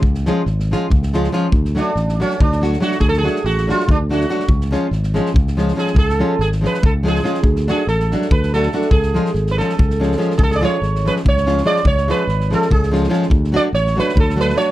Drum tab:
SD |-oo-ooo--oooo-|-oo-oooo-ooooo|-ooooooo--oooo|-oo-oooo-ooooo|
BD |o-------o-----|o-------o-----|o-------o-----|o-------o-----|

SD |-o--oooo--oooo|-oo-oooo-ooooo|-ooooooo-ooooo|-oo-oooo-ooooo|
BD |o-------o-----|o-------o-----|o-------o-----|o-------o-----|

SD |-oo-oooo-ooooo|-oo-oooo-oooo-|
BD |o-------o-----|o-------o-----|